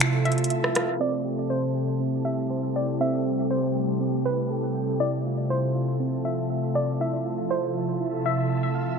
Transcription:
0.00 0.96 C3 medium
0.00 0.96 F3 medium
0.00 0.96 A3 medium
0.00 1.00 E4 medium
0.00 0.24 F4 medium
0.00 0.96 F4 medium
0.00 0.96 A4 medium
0.00 0.21 C5 medium
0.00 0.96 E5 medium
0.00 0.25 A5 medium
0.00 0.96 A5 medium
0.00 finger snap loud
0.00 closed hi-hat medium
0.25 1.00 F4 medium
0.25 0.49 E5 medium
0.25 closed hi-hat soft
0.32 closed hi-hat medium
0.38 closed hi-hat medium
0.44 closed hi-hat medium
0.50 1.00 E5 medium
0.50 closed hi-hat medium
0.64 cross-stick medium
0.75 1.00 F5 medium
0.75 cross-stick medium
0.75 closed hi-hat medium
1.00 8.96 C3 medium
1.00 4.96 G3 medium
1.00 8.96 A3 medium
1.00 1.49 C4 medium
1.00 4.96 C4 medium
1.00 4.96 E4 medium
1.00 4.96 G4 medium
1.00 4.96 A4 medium
1.00 1.48 D5 loud
1.00 2.98 A5 medium
1.25 1.74 G4 medium
1.50 1.99 C4 medium
1.50 2.21 C5 medium
1.75 2.24 G4 medium
2.00 2.99 C4 medium
2.25 3.24 G4 medium
2.25 2.72 E5 medium
2.50 4.00 C5 medium
2.75 2.99 D5 medium
2.75 4.25 G5 medium
3.00 3.49 C4 medium
3.00 3.48 E5 loud
3.00 4.98 G5 medium
3.25 3.73 G4 medium
3.51 3.99 C4 medium
3.51 4.21 C5 medium
3.75 4.24 G4 medium
4.00 5.00 C4 medium
4.25 5.00 G4 medium
4.25 4.96 B4 medium
4.50 5.00 A4 medium
4.75 5.00 G5 medium
5.00 8.96 F3 medium
5.00 5.49 E4 medium
5.00 8.96 F4 medium
5.00 8.96 A4 medium
5.00 5.47 D5 medium
5.00 8.96 E5 medium
5.00 8.96 A5 medium
5.26 5.74 F4 medium
5.50 6.99 E4 medium
5.50 6.21 C5 medium
5.75 6.24 F4 medium
6.00 7.50 C4 medium
6.25 7.24 F4 medium
6.25 6.72 E5 medium
6.50 8.00 E5 medium
6.75 6.99 D5 medium
6.75 8.25 A5 medium
7.00 7.49 E4 medium
7.00 7.48 E5 medium
7.25 7.73 F4 medium
7.51 7.99 E4 medium
7.51 8.21 C5 medium
7.75 8.24 F4 medium
8.00 8.99 E4 medium
8.25 8.99 F4 medium
8.25 8.49 E5 medium
8.50 8.99 E5 medium
8.75 8.99 F5 medium

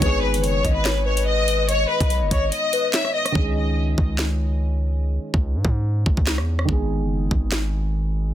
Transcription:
0.00 0.35 G#1 loud
0.00 3.30 D#3 medium
0.00 3.31 G#3 medium
0.00 3.32 B3 medium
0.00 0.61 B4 loud
0.00 0.21 C#5 loud
0.00 kick loud
0.00 closed hi-hat medium
0.05 3.33 G#4 medium
0.23 0.43 B4 medium
0.34 0.63 F#1 loud
0.34 closed hi-hat medium
0.44 0.74 C#5 medium
0.44 closed hi-hat medium
0.65 1.86 G#1 loud
0.65 0.84 D#5 medium
0.65 kick loud
0.65 closed hi-hat medium
0.75 1.04 B4 medium
0.85 1.05 C#5 medium
0.85 snare loud
0.85 clap medium
0.85 closed hi-hat medium
1.06 1.65 B4 medium
1.06 1.26 C#5 medium
1.17 closed hi-hat medium
1.27 1.66 D#5 medium
1.48 closed hi-hat medium
1.69 1.89 C#5 loud
1.69 2.69 D#5 loud
1.69 closed hi-hat medium
1.89 2.09 B4 medium
2.00 2.23 B1 loud
2.00 kick medium
2.00 closed hi-hat medium
2.10 closed hi-hat medium
2.21 2.31 F#1 loud
2.31 2.51 G#1 loud
2.31 2.51 C#5 medium
2.31 kick medium
2.31 closed hi-hat medium
2.52 2.91 D#5 medium
2.52 closed hi-hat medium
2.73 2.93 B4 medium
2.73 closed hi-hat medium
2.94 3.14 C#5 medium
2.94 3.14 E5 medium
2.94 snare loud
2.94 clap medium
2.94 closed hi-hat medium
3.05 cross-stick medium
3.15 3.34 D#5 medium
3.15 3.35 D#5 medium
3.25 cross-stick medium
3.25 closed hi-hat medium
3.32 3.95 C#2 loud
3.32 6.63 D#3 medium
3.32 6.64 G#3 medium
3.32 kick loud
3.37 6.65 C#4 medium
3.37 6.67 G#4 medium
3.98 5.19 C#2 loud
3.98 kick medium
4.19 snare loud
4.19 clap medium
5.34 5.56 C#2 loud
5.34 kick medium
5.55 5.64 G#2 loud
5.65 6.05 G#2 loud
5.65 kick medium
6.06 6.17 C#2 loud
6.06 kick medium
6.17 6.39 C#2 loud
6.17 kick loud
6.27 snare loud
6.27 clap medium
6.38 6.67 E2 loud
6.38 cross-stick medium
6.59 cross-stick medium
6.65 7.02 G#1 loud
6.65 8.34 D#3 medium
6.65 8.34 G#3 medium
6.65 kick loud
6.70 8.34 B3 medium
6.70 8.34 G#4 medium
7.01 7.30 F#1 loud
7.31 8.34 G#1 loud
7.31 kick medium
7.52 snare loud
7.52 clap medium

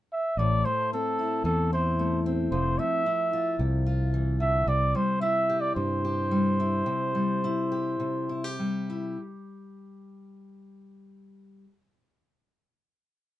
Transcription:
0.13 0.40 E5 medium
0.37 0.63 A1 medium
0.37 2.53 A2 medium
0.37 0.66 D5 medium
0.65 1.99 A3 medium
0.65 0.92 C5 medium
0.93 2.26 C4 medium
0.93 1.43 A4 medium
1.19 1.72 E4 soft
1.44 2.48 E2 medium
1.44 2.52 E3 medium
1.44 1.70 A4 medium
1.73 3.06 E4 medium
1.73 2.23 C5 medium
1.99 2.79 A3 medium
2.26 3.06 C4 medium
2.52 2.78 F1 medium
2.52 4.13 F3 medium
2.52 2.80 C5 medium
2.79 4.94 A3 medium
2.79 3.60 E5 medium
3.06 5.21 E4 medium
3.33 3.85 F4 medium
3.59 4.63 C2 medium
3.59 4.64 C3 medium
3.86 4.64 F4 medium
4.14 4.40 E3 medium
4.40 4.67 D3 medium
4.40 4.70 E5 medium
4.67 4.93 C2 medium
4.67 5.76 C3 medium
4.67 4.97 D5 medium
4.95 6.31 G3 medium
4.95 5.21 C5 medium
5.21 6.59 E4 medium
5.21 5.62 E5 medium
5.49 6.04 G4 medium
5.61 5.75 D5 medium
5.76 6.83 G2 medium
5.76 6.86 C3 medium
5.76 8.56 C5 medium
6.05 7.71 G4 medium
6.31 7.14 G3 medium
6.60 7.44 E4 soft
6.86 7.98 C3 medium
7.15 8.58 G3 medium
7.44 8.28 E4 medium
7.72 8.29 G4 medium
8.00 9.16 C3 medium
8.29 8.44 E4 medium
8.44 9.20 G4 soft
8.59 11.64 G3 medium
8.90 9.16 E4 soft

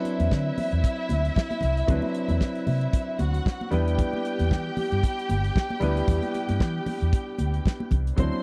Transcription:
0.00 1.84 F#3 medium
0.00 1.85 C4 medium
0.00 1.85 D4 medium
0.00 1.86 E4 medium
0.00 3.16 E4 medium
0.00 1.86 B4 medium
0.00 3.16 E5 medium
0.05 closed hi-hat medium
0.05 muted conga soft
0.20 0.28 E2 medium
0.20 closed hi-hat soft
0.20 high conga medium
0.31 0.50 D3 loud
0.31 kick medium
0.31 snare medium
0.31 muted conga soft
0.58 open hi-hat medium
0.58 muted conga soft
0.58 high conga medium
0.58 low conga medium
0.72 0.81 E2 medium
0.72 closed hi-hat soft
0.84 kick loud
0.84 closed hi-hat medium
1.09 1.29 D2 medium
1.09 closed hi-hat medium
1.09 high conga medium
1.25 closed hi-hat soft
1.36 kick medium
1.36 snare loud
1.36 muted conga soft
1.51 closed hi-hat soft
1.51 high conga medium
1.61 1.81 C2 medium
1.61 closed hi-hat medium
1.61 muted conga soft
1.61 low conga medium
1.77 closed hi-hat soft
1.87 1.99 D2 medium
1.87 3.68 F#3 medium
1.87 3.68 C4 medium
1.87 3.69 D4 medium
1.87 3.69 E4 medium
1.87 3.70 B4 medium
1.87 kick loud
1.87 closed hi-hat medium
1.87 low conga medium
2.02 high conga medium
2.15 closed hi-hat soft
2.29 2.38 E2 medium
2.29 closed hi-hat soft
2.29 high conga medium
2.41 kick medium
2.41 snare medium
2.55 closed hi-hat soft
2.67 2.86 C3 medium
2.67 open hi-hat medium
2.67 muted conga soft
2.67 high conga medium
2.67 low conga medium
2.81 closed hi-hat soft
2.93 kick loud
2.93 closed hi-hat medium
3.19 3.38 D2 medium
3.19 3.71 F#4 medium
3.19 3.71 F#5 medium
3.19 closed hi-hat medium
3.19 muted conga soft
3.19 high conga medium
3.34 closed hi-hat soft
3.46 kick loud
3.46 snare loud
3.46 muted conga soft
3.61 high conga medium
3.71 4.01 E2 loud
3.71 5.77 G3 medium
3.71 5.78 B3 medium
3.71 5.78 D4 medium
3.71 5.79 E4 medium
3.71 7.88 G4 medium
3.71 5.79 B4 medium
3.71 7.88 G5 medium
3.71 closed hi-hat soft
3.71 muted conga soft
3.71 low conga medium
3.88 closed hi-hat soft
3.99 kick loud
3.99 closed hi-hat medium
3.99 muted conga soft
3.99 low conga medium
4.13 high conga medium
4.25 closed hi-hat soft
4.39 4.53 E2 medium
4.39 closed hi-hat soft
4.39 high conga medium
4.51 4.69 E3 loud
4.51 kick loud
4.51 snare loud
4.77 open hi-hat medium
4.77 muted conga soft
4.77 high conga medium
4.77 low conga medium
4.92 5.00 G2 medium
4.92 closed hi-hat soft
5.03 kick loud
5.03 closed hi-hat medium
5.03 muted conga soft
5.19 closed hi-hat soft
5.29 5.48 G1 loud
5.29 closed hi-hat medium
5.29 high conga medium
5.44 closed hi-hat soft
5.56 kick loud
5.56 snare loud
5.70 high conga medium
5.80 6.00 D2 medium
5.80 7.87 G3 medium
5.80 7.87 B3 medium
5.80 7.88 D4 medium
5.80 7.88 E4 medium
5.80 7.89 B4 medium
5.80 closed hi-hat soft
5.80 muted conga soft
5.80 low conga medium
5.97 closed hi-hat soft
6.08 6.19 E2 loud
6.08 kick loud
6.08 closed hi-hat medium
6.08 muted conga soft
6.08 low conga medium
6.22 closed hi-hat soft
6.22 high conga medium
6.34 closed hi-hat medium
6.34 muted conga soft
6.49 6.61 G2 medium
6.49 closed hi-hat soft
6.49 high conga medium
6.60 6.79 E3 loud
6.60 kick loud
6.60 snare loud
6.60 muted conga soft
6.86 open hi-hat medium
6.86 high conga medium
6.86 low conga medium
7.01 7.10 E2 medium
7.01 closed hi-hat soft
7.13 kick loud
7.13 closed hi-hat medium
7.39 7.58 D2 medium
7.39 closed hi-hat medium
7.39 high conga medium
7.54 closed hi-hat soft
7.65 kick medium
7.65 snare loud
7.65 muted conga soft
7.80 high conga medium
7.91 8.10 C2 medium
7.91 kick medium
7.91 closed hi-hat soft
7.91 muted conga soft
7.91 low conga medium
8.07 closed hi-hat soft
8.16 8.28 D2 loud
8.16 8.43 F#3 medium
8.16 8.43 C4 medium
8.16 8.43 D4 medium
8.16 8.43 E4 medium
8.16 8.43 C5 medium
8.16 8.43 C6 loud
8.16 kick loud
8.16 closed hi-hat medium
8.16 muted conga soft
8.16 low conga medium
8.33 high conga medium

